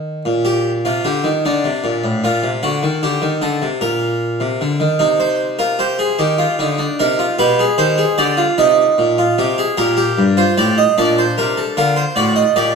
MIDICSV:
0, 0, Header, 1, 2, 480
1, 0, Start_track
1, 0, Key_signature, -3, "minor"
1, 0, Tempo, 794702
1, 158, Time_signature, 6, 3, 24, 8
1, 7701, End_track
2, 0, Start_track
2, 0, Title_t, "Harpsichord"
2, 0, Program_c, 0, 6
2, 0, Note_on_c, 0, 51, 71
2, 133, Note_off_c, 0, 51, 0
2, 154, Note_on_c, 0, 46, 59
2, 271, Note_on_c, 0, 67, 82
2, 421, Note_off_c, 0, 67, 0
2, 503, Note_off_c, 0, 46, 0
2, 514, Note_on_c, 0, 48, 55
2, 515, Note_on_c, 0, 65, 65
2, 631, Note_off_c, 0, 48, 0
2, 631, Note_on_c, 0, 50, 54
2, 632, Note_off_c, 0, 65, 0
2, 633, Note_on_c, 0, 67, 66
2, 749, Note_off_c, 0, 50, 0
2, 749, Note_on_c, 0, 51, 58
2, 782, Note_off_c, 0, 67, 0
2, 868, Note_off_c, 0, 51, 0
2, 877, Note_on_c, 0, 50, 64
2, 879, Note_on_c, 0, 62, 73
2, 992, Note_off_c, 0, 50, 0
2, 993, Note_on_c, 0, 48, 59
2, 1110, Note_off_c, 0, 48, 0
2, 1110, Note_on_c, 0, 46, 60
2, 1229, Note_off_c, 0, 46, 0
2, 1231, Note_on_c, 0, 45, 63
2, 1343, Note_off_c, 0, 62, 0
2, 1349, Note_off_c, 0, 45, 0
2, 1352, Note_on_c, 0, 46, 67
2, 1355, Note_on_c, 0, 65, 81
2, 1467, Note_on_c, 0, 48, 56
2, 1470, Note_off_c, 0, 46, 0
2, 1504, Note_off_c, 0, 65, 0
2, 1588, Note_off_c, 0, 48, 0
2, 1588, Note_on_c, 0, 50, 70
2, 1588, Note_on_c, 0, 66, 80
2, 1708, Note_off_c, 0, 50, 0
2, 1709, Note_on_c, 0, 51, 66
2, 1739, Note_off_c, 0, 66, 0
2, 1828, Note_off_c, 0, 51, 0
2, 1830, Note_on_c, 0, 50, 62
2, 1831, Note_on_c, 0, 67, 74
2, 1944, Note_on_c, 0, 51, 58
2, 1947, Note_off_c, 0, 50, 0
2, 1979, Note_off_c, 0, 67, 0
2, 2063, Note_on_c, 0, 50, 59
2, 2064, Note_off_c, 0, 51, 0
2, 2065, Note_on_c, 0, 69, 70
2, 2183, Note_off_c, 0, 50, 0
2, 2185, Note_on_c, 0, 48, 66
2, 2215, Note_off_c, 0, 69, 0
2, 2302, Note_on_c, 0, 46, 59
2, 2303, Note_off_c, 0, 48, 0
2, 2303, Note_on_c, 0, 70, 79
2, 2651, Note_off_c, 0, 46, 0
2, 2660, Note_on_c, 0, 48, 62
2, 2778, Note_off_c, 0, 48, 0
2, 2786, Note_on_c, 0, 50, 71
2, 2900, Note_on_c, 0, 51, 63
2, 2901, Note_off_c, 0, 50, 0
2, 2998, Note_off_c, 0, 70, 0
2, 3016, Note_on_c, 0, 48, 68
2, 3016, Note_on_c, 0, 63, 71
2, 3017, Note_off_c, 0, 51, 0
2, 3139, Note_on_c, 0, 72, 79
2, 3289, Note_off_c, 0, 72, 0
2, 3368, Note_off_c, 0, 63, 0
2, 3375, Note_on_c, 0, 70, 67
2, 3377, Note_on_c, 0, 65, 63
2, 3495, Note_off_c, 0, 70, 0
2, 3496, Note_off_c, 0, 65, 0
2, 3497, Note_on_c, 0, 67, 58
2, 3500, Note_on_c, 0, 72, 71
2, 3616, Note_off_c, 0, 67, 0
2, 3617, Note_on_c, 0, 68, 69
2, 3650, Note_off_c, 0, 72, 0
2, 3718, Note_off_c, 0, 48, 0
2, 3736, Note_on_c, 0, 67, 86
2, 3737, Note_off_c, 0, 68, 0
2, 3739, Note_on_c, 0, 51, 72
2, 3856, Note_on_c, 0, 65, 66
2, 3889, Note_off_c, 0, 51, 0
2, 3976, Note_off_c, 0, 65, 0
2, 3981, Note_on_c, 0, 50, 68
2, 3982, Note_on_c, 0, 63, 67
2, 4098, Note_on_c, 0, 62, 69
2, 4100, Note_off_c, 0, 63, 0
2, 4131, Note_off_c, 0, 50, 0
2, 4207, Note_off_c, 0, 67, 0
2, 4217, Note_off_c, 0, 62, 0
2, 4224, Note_on_c, 0, 70, 85
2, 4226, Note_on_c, 0, 63, 72
2, 4227, Note_on_c, 0, 48, 70
2, 4342, Note_off_c, 0, 63, 0
2, 4343, Note_on_c, 0, 65, 66
2, 4374, Note_off_c, 0, 70, 0
2, 4376, Note_off_c, 0, 48, 0
2, 4460, Note_off_c, 0, 65, 0
2, 4461, Note_on_c, 0, 47, 75
2, 4462, Note_on_c, 0, 67, 82
2, 4464, Note_on_c, 0, 71, 87
2, 4580, Note_off_c, 0, 67, 0
2, 4587, Note_on_c, 0, 68, 74
2, 4611, Note_off_c, 0, 47, 0
2, 4613, Note_off_c, 0, 71, 0
2, 4699, Note_on_c, 0, 51, 65
2, 4700, Note_on_c, 0, 72, 87
2, 4701, Note_on_c, 0, 67, 71
2, 4702, Note_off_c, 0, 68, 0
2, 4819, Note_off_c, 0, 67, 0
2, 4819, Note_on_c, 0, 68, 63
2, 4850, Note_off_c, 0, 51, 0
2, 4850, Note_off_c, 0, 72, 0
2, 4938, Note_off_c, 0, 68, 0
2, 4940, Note_on_c, 0, 50, 64
2, 4940, Note_on_c, 0, 74, 81
2, 4942, Note_on_c, 0, 67, 67
2, 5056, Note_on_c, 0, 65, 72
2, 5060, Note_off_c, 0, 67, 0
2, 5091, Note_off_c, 0, 50, 0
2, 5091, Note_off_c, 0, 74, 0
2, 5177, Note_off_c, 0, 65, 0
2, 5182, Note_on_c, 0, 63, 74
2, 5183, Note_on_c, 0, 75, 90
2, 5184, Note_on_c, 0, 48, 69
2, 5333, Note_off_c, 0, 48, 0
2, 5425, Note_on_c, 0, 46, 69
2, 5533, Note_off_c, 0, 63, 0
2, 5546, Note_on_c, 0, 65, 68
2, 5574, Note_off_c, 0, 46, 0
2, 5662, Note_off_c, 0, 65, 0
2, 5667, Note_on_c, 0, 48, 75
2, 5669, Note_on_c, 0, 67, 78
2, 5783, Note_off_c, 0, 67, 0
2, 5787, Note_on_c, 0, 68, 65
2, 5815, Note_off_c, 0, 48, 0
2, 5882, Note_off_c, 0, 75, 0
2, 5902, Note_off_c, 0, 68, 0
2, 5904, Note_on_c, 0, 67, 70
2, 5904, Note_on_c, 0, 70, 78
2, 5905, Note_on_c, 0, 46, 79
2, 6014, Note_off_c, 0, 67, 0
2, 6021, Note_on_c, 0, 67, 93
2, 6053, Note_off_c, 0, 46, 0
2, 6146, Note_on_c, 0, 43, 69
2, 6171, Note_off_c, 0, 67, 0
2, 6253, Note_off_c, 0, 70, 0
2, 6265, Note_on_c, 0, 72, 65
2, 6266, Note_on_c, 0, 65, 84
2, 6295, Note_off_c, 0, 43, 0
2, 6382, Note_off_c, 0, 65, 0
2, 6382, Note_off_c, 0, 72, 0
2, 6388, Note_on_c, 0, 45, 70
2, 6389, Note_on_c, 0, 67, 84
2, 6389, Note_on_c, 0, 74, 66
2, 6505, Note_off_c, 0, 74, 0
2, 6510, Note_on_c, 0, 75, 74
2, 6537, Note_off_c, 0, 45, 0
2, 6538, Note_off_c, 0, 67, 0
2, 6626, Note_off_c, 0, 75, 0
2, 6630, Note_on_c, 0, 46, 74
2, 6631, Note_on_c, 0, 62, 89
2, 6631, Note_on_c, 0, 74, 77
2, 6748, Note_off_c, 0, 74, 0
2, 6755, Note_on_c, 0, 72, 75
2, 6780, Note_off_c, 0, 46, 0
2, 6870, Note_off_c, 0, 72, 0
2, 6872, Note_on_c, 0, 70, 75
2, 6876, Note_on_c, 0, 48, 73
2, 6989, Note_off_c, 0, 70, 0
2, 6990, Note_on_c, 0, 69, 69
2, 7024, Note_off_c, 0, 48, 0
2, 7099, Note_off_c, 0, 62, 0
2, 7108, Note_off_c, 0, 69, 0
2, 7110, Note_on_c, 0, 50, 77
2, 7111, Note_on_c, 0, 70, 74
2, 7113, Note_on_c, 0, 65, 94
2, 7226, Note_on_c, 0, 72, 68
2, 7228, Note_off_c, 0, 70, 0
2, 7260, Note_off_c, 0, 50, 0
2, 7262, Note_off_c, 0, 65, 0
2, 7344, Note_on_c, 0, 74, 80
2, 7345, Note_off_c, 0, 72, 0
2, 7345, Note_on_c, 0, 45, 79
2, 7347, Note_on_c, 0, 66, 89
2, 7464, Note_on_c, 0, 75, 77
2, 7465, Note_off_c, 0, 74, 0
2, 7497, Note_off_c, 0, 45, 0
2, 7498, Note_off_c, 0, 66, 0
2, 7585, Note_off_c, 0, 75, 0
2, 7586, Note_on_c, 0, 46, 68
2, 7587, Note_on_c, 0, 67, 86
2, 7587, Note_on_c, 0, 74, 74
2, 7701, Note_off_c, 0, 46, 0
2, 7701, Note_off_c, 0, 67, 0
2, 7701, Note_off_c, 0, 74, 0
2, 7701, End_track
0, 0, End_of_file